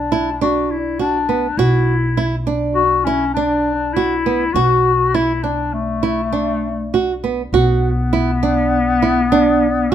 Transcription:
Already playing: upright bass B1, clarinet D4
0.12 nylon-string guitar E4
0.41 nylon-string guitar D4, clarinet F#4
0.71 clarinet E4
0.99 clarinet D4, nylon-string guitar F#4
1.29 nylon-string guitar B3
1.57 upright bass B1, clarinet E4, nylon-string guitar F#4
2.17 nylon-string guitar E4
2.47 nylon-string guitar D4
2.75 clarinet F#4
3.04 clarinet C#4, nylon-string guitar E4
3.34 clarinet D4, nylon-string guitar D4
3.93 clarinet E4, nylon-string guitar F#4
4.26 nylon-string guitar B3
4.53 upright bass B1, clarinet F#4, nylon-string guitar F#4
5.14 nylon-string guitar E4, clarinet E4
5.44 nylon-string guitar D4, clarinet D4
5.74 clarinet A3
6.03 nylon-string guitar E4
6.33 nylon-string guitar D4
6.94 nylon-string guitar F#4
7.24 nylon-string guitar B3
7.52 upright bass B1, clarinet B3, nylon-string guitar F#4
8.13 nylon-string guitar E4
8.43 nylon-string guitar D4
9.02 nylon-string guitar E4
9.32 nylon-string guitar D4
9.91 clarinet C#4

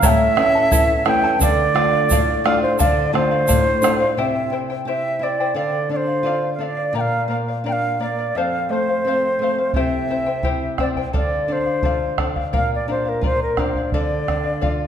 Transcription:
0.03 nylon-string guitar A2, charango E4 A4 C#5 E5 A5, flute G5, bombo low, shaker
0.09 flute E5
0.35 nylon-string guitar E3 A3 C#4, charango E4 A4 E5 A5, bombo rim
0.55 charango E4 A4 A5
0.72 nylon-string guitar E2, charango E4 A4 C#5 E5 A5, bombo low, shaker
1.05 nylon-string guitar E3 A3 C#4, charango E4 A4 E5 A5, flute G5, bombo rim
1.24 charango E4 A4 A5
1.39 nylon-string guitar D3, charango A4 D5 F5, flute D5, bombo low, shaker
1.74 nylon-string guitar A3 D4 F4, charango A4 D5 F5, bombo rim
1.93 charango D5 F5
2.09 nylon-string guitar A2, charango A4 D5 F5, bombo low, shaker
2.44 nylon-string guitar A3 D4 F4, charango A4 D5 F5, flute F5, bombo rim
2.62 flute C5, charango D5 F5
2.79 nylon-string guitar D3, charango A4 D5 F5, flute D5, bombo low, shaker
3.13 nylon-string guitar A3 D4 F4, charango A4 D5 F5, flute C5, bombo rim
3.31 charango D5 F5
3.48 nylon-string guitar A2, charango A4 D5 F5, bombo low, shaker
3.82 nylon-string guitar A3 D4 F4, charango A4 D5 F5, bombo rim, shaker
4.00 charango D5 F5
4.17 nylon-string guitar C3, charango E4 G4 C5 E5 G5, flute E5
4.50 nylon-string guitar E4, charango E4 C5 E5 G5
4.70 charango E4 C5 G5
4.85 charango E4 G4 C5 E5 G5, nylon-string guitar G4, flute E5
5.19 nylon-string guitar E4, charango E4 C5 E5 G5, flute D5
5.40 charango E4 C5 G5
5.54 nylon-string guitar D3, charango A4 D5 F5, flute D5
5.89 nylon-string guitar D4, charango A4 D5 F5, flute D5
5.96 flute C5
6.07 charango D5 F5
6.23 nylon-string guitar F4, charango A4 D5 F5
6.54 flute F5
6.59 nylon-string guitar D4, charango A4 D5 F5
6.63 flute D5
6.77 charango D5 F5
6.93 nylon-string guitar A#2, charango A#4 D5 F5
6.97 flute F5 G5
7.28 nylon-string guitar A#3, charango A#4 D5 F5
7.48 charango D5 F5
7.64 nylon-string guitar D4, charango A#4 D5 F5
7.68 flute F5 G5
8.00 nylon-string guitar A#3, charango A#4 D5 F5, flute D5
8.19 charango D5 F5
8.35 nylon-string guitar F2, charango A4 C5 F5, flute F5
8.69 nylon-string guitar A3, charango A4 C5, flute C5
8.73 charango F5
8.89 charango C5 F5
9.05 nylon-string guitar C4, charango A4 C5 F5
9.39 nylon-string guitar A3, charango A4 C5
9.43 charango F5
9.58 charango C5 F5
9.73 nylon-string guitar C3, charango E4 G4 C5 E5 G5, flute E5, bombo low
10.09 nylon-string guitar C4, charango E4 C5 E5 G5
10.26 charango E4 C5 G5
10.43 nylon-string guitar E4, charango E4 G4 C5 E5 G5, bombo low
10.78 nylon-string guitar C4, charango E4 C5 E5 G5, flute D5, bombo rim, bombo low
10.96 charango E4 C5 G5, bombo low
11.13 nylon-string guitar D3, charango A4 D5 F5, flute D5, bombo low
11.48 nylon-string guitar D4, charango A4 D5 F5
11.52 flute C5
11.66 charango D5 F5
11.83 nylon-string guitar F4, charango A4 D5 F5, bombo low
12.18 nylon-string guitar D4, charango A4 D5 F5, bombo rim, bombo low
12.36 charango D5 F5, bombo low
12.53 nylon-string guitar A#2, charango A#4 D5 F5, flute F5, bombo low
12.75 flute D5
12.88 nylon-string guitar D4, charango A#4 D5 F5, flute C5
13.05 flute A#4, charango D5 F5
13.21 nylon-string guitar F4, charango A#4 D5 F5, flute C5, bombo low
13.42 flute A#4
13.57 nylon-string guitar D4, charango A#4 D5 F5, flute C5, bombo rim, bombo low
13.75 charango D5 F5, bombo low
13.92 nylon-string guitar D3, charango A4 D5 F5, flute D5, bombo low
14.28 nylon-string guitar D4, charango A4 D5 F5, bombo rim, bombo low
14.44 charango D5 F5
14.61 nylon-string guitar F4, charango A4 D5 F5, bombo low

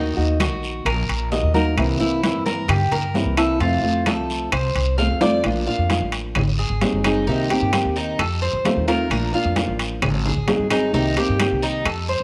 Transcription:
Already playing: upright bass D#2, nylon-string guitar D#3 A#3 D#4 F#4, cuban tres D#4
0.17 upright bass D#2, nylon-string guitar A#3 D#4 F#4, high conga
0.40 nylon-string guitar D#3 A#3 D#4 F#4, cuban tres F#4, high conga, high timbale, short guiro, claves
0.51 upright bass A#1
0.63 high conga, short guiro
0.85 upright bass A#1, cuban tres A#4, muted nylon-string guitar stroke, high conga, high timbale, long guiro, claves
1.08 upright bass A#1, high conga, high timbale
1.32 nylon-string guitar D#3 A#3 D#4 F#4, cuban tres D#5, high conga, low timbale, short guiro
1.43 upright bass D#2
1.54 nylon-string guitar A#3 D#4 F#4, cuban tres A#4, high conga, short guiro
1.77 upright bass C2, nylon-string guitar C3 E3 A#3 C4 E4, high conga, high timbale, long guiro, claves
2.00 upright bass C2, nylon-string guitar E3 A#3 C4 E4, cuban tres E4, high conga
2.23 nylon-string guitar E3 A#3 C4 E4, high conga, high timbale, short guiro
2.34 upright bass G2
2.46 cuban tres A#4, high conga, short guiro
2.68 upright bass G2, cuban tres G4, muted nylon-string guitar stroke, high conga, low conga, high timbale, long guiro, claves
2.92 upright bass G2, cuban tres A#4, high conga, low conga, high timbale
3.14 nylon-string guitar E3 A#3 C4 E4, high conga, low timbale, short guiro
3.26 upright bass C2
3.37 nylon-string guitar E3 A#3 C4 E4, cuban tres A4, high conga, high timbale, short guiro, claves
3.60 upright bass F2, nylon-string guitar C3 F3 A3 C4 F4, cuban tres F4, high conga, high timbale, long guiro
3.83 upright bass F2, nylon-string guitar F3 A3 C4 F4, high conga
4.06 nylon-string guitar F3 A3 C4 F4, cuban tres A4, high conga, high timbale, short guiro, claves
4.18 upright bass C2
4.30 high conga, short guiro
4.52 upright bass C2, cuban tres C5, muted nylon-string guitar stroke, high conga, high timbale, long guiro, claves
4.75 upright bass C2, high conga, high timbale
4.98 nylon-string guitar F3 A3 C4 F4, cuban tres F5, high conga, low timbale, short guiro
5.10 upright bass F2
5.21 nylon-string guitar F3 A3 C4 F4, cuban tres D5, high conga, high timbale, short guiro
5.44 upright bass A#1, nylon-string guitar F3 A#3 D4 F4, high conga, high timbale, long guiro, claves
5.67 nylon-string guitar A#3 D4 F4, cuban tres F5, high conga
5.78 upright bass F2
5.90 nylon-string guitar F3 A#3 D4 F4, high conga, high timbale, low timbale, short guiro
6.00 upright bass A1
6.12 high conga, high timbale, short guiro
6.35 upright bass G#1, muted nylon-string guitar stroke, high conga, low conga, high timbale, long guiro, claves
6.59 cuban tres G#4, high conga
6.70 upright bass G#1
6.81 nylon-string guitar F#3 C4 D#4 G#4, high conga, high timbale, low timbale, short guiro
6.93 upright bass F#1
7.04 nylon-string guitar F#3 C4 D#4 G#4, cuban tres D#4, high conga, high timbale, short guiro, claves
7.27 upright bass C2, nylon-string guitar C3 D#3 A#3 C4 G4, cuban tres D#4, long guiro
7.50 nylon-string guitar D#3 A#3 C4 G4, cuban tres G4, high conga, high timbale
7.61 upright bass G2
7.73 nylon-string guitar D#3 A#3 C4 G4, high conga, high timbale, low timbale, short guiro, claves
7.85 upright bass D#2
7.96 cuban tres D#4, short guiro
8.19 upright bass F2, cuban tres A4, muted nylon-string guitar stroke, high conga, high timbale, long guiro, claves
8.42 cuban tres C5, high conga
8.53 upright bass F2
8.65 nylon-string guitar D#3 A3 C4 F4, high conga, high timbale, low timbale, short guiro
8.76 upright bass D#2
8.88 nylon-string guitar D#3 A3 C4 F4, cuban tres A#4, high timbale, short guiro
9.10 upright bass A#1, nylon-string guitar F3 A#3 D4 F4, high conga, high timbale, long guiro, claves
9.33 nylon-string guitar A#3 D4 F4, cuban tres F5, high conga
9.45 upright bass F2
9.56 nylon-string guitar F3 A#3 D4 F4, high conga, high timbale, low timbale, short guiro
9.68 upright bass A1
9.79 high conga, high timbale, short guiro
10.02 upright bass G#1, muted nylon-string guitar stroke, high conga, low conga, high timbale, long guiro, claves
10.25 cuban tres G#4, high conga, low conga
10.37 upright bass G#1
10.48 nylon-string guitar F#3 C4 D#4 G#4, high conga, high timbale, low timbale, short guiro
10.59 upright bass G#1
10.70 nylon-string guitar F#3 C4 D#4 G#4, cuban tres D#4, high conga, high timbale, short guiro, claves
10.93 upright bass C2, nylon-string guitar C3 D#3 A#3 C4 G4, cuban tres D#4, long guiro
11.17 nylon-string guitar D#3 A#3 C4 G4, cuban tres G4, high conga, high timbale
11.29 upright bass G2
11.40 nylon-string guitar D#3 A#3 C4 G4, high conga, high timbale, low timbale, short guiro, claves
11.51 upright bass C2
11.62 cuban tres D#4, short guiro
11.85 upright bass F2, cuban tres A4, muted nylon-string guitar stroke, high conga, high timbale, long guiro, claves
12.09 cuban tres C5, high conga
12.20 upright bass F2

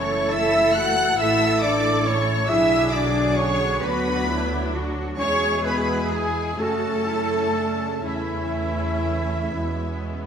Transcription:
Already playing: double bass section F#1, trombone section E3 A3, viola section A3 E4, french horn section C#4, cello section A4, trumpet section C#5, violin section C#5 C#6, flute section C#5, oboe C#5, clarinet C#5
0.30 french horn section E4, trumpet section E5, oboe E5, clarinet E5, flute section E5, violin section E5 E6
0.74 french horn section F#4, oboe F#5, trumpet section F#5, clarinet F#5, violin section F#5 F#6, flute section F#5
1.17 double bass section A1, viola section A3 E4, french horn section E4, cello section A4, clarinet E5, trumpet section E5, oboe E5, violin section E5 E6, flute section E5
1.62 french horn section D4, clarinet D5, trumpet section D5, oboe D5, violin section D5 D6, flute section D5
2.05 french horn section C#4, clarinet C#5, trumpet section C#5, flute section C#5, oboe C#5, violin section C#5 C#6
2.47 double bass section B1, trombone section D3 F#3, viola section F#3 D4, french horn section E4, cello section G#4, clarinet E5, violin section E5 E6, trumpet section E5, oboe E5, flute section E5
2.91 french horn section D4, flute section D5, violin section D5 D6, trumpet section D5, oboe D5, clarinet D5
3.35 french horn section C#4, trumpet section C#5, violin section C#5 C#6, flute section C#5, oboe C#5, clarinet C#5
3.80 double bass section D2, viola section F#3 D4, french horn section B3, cello section F#4, trumpet section B4, flute section B4, violin section B4 B5, oboe B4, clarinet B4
4.27 cello section E4
4.73 cello section F#4
5.17 double bass section E2, trombone section B2 G#3, viola section G#3 E4, french horn section C#4, cello section G#4, trumpet section C#5, flute section C#5, oboe C#5, violin section C#5 C#6, clarinet C#5
5.63 french horn section B3, flute section B4, trumpet section B4, clarinet B4, oboe B4, violin section B4 B5
6.10 french horn section G#3, flute section G#4, violin section G#4 G#5, clarinet G#4, trumpet section G#4, oboe G#4
6.57 double bass section F#2, trombone section C#3 A3, french horn section A3, viola section A3 C#4, cello section F#4, flute section A4, trumpet section A4, clarinet A4, oboe A4, violin section A4 A5
7.08 cello section E4
7.56 cello section D4
8.03 double bass section E2, french horn section E3, viola section A3 C#4, cello section C#4, flute section E4, clarinet E4, trumpet section E4, violin section E4 E5, oboe E4
9.54 double bass section E2, trombone section B2 G#3, viola section G#3 B3

